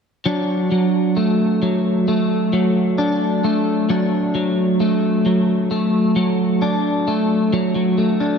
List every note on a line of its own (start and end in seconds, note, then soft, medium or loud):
0.26 0.71 F#3 medium
0.26 2.98 D4 soft
0.72 1.62 F#3 soft
1.17 2.08 A3 soft
1.62 2.53 F#3 soft
2.08 3.44 A3 soft
2.53 3.89 F#3 soft
2.98 3.90 D4 medium
3.44 4.80 A3 soft
3.89 4.34 F#3 medium
3.89 6.62 D4 medium
4.35 5.25 F#3 soft
4.80 5.70 A3 soft
5.26 6.16 F#3 soft
5.71 7.07 A3 soft
6.16 7.53 F#3 soft
6.62 8.20 D4 medium
7.08 7.98 A3 soft
7.53 7.75 F#3 medium
7.75 8.38 F#3 soft
7.98 8.38 A3 medium
8.20 8.38 D4 medium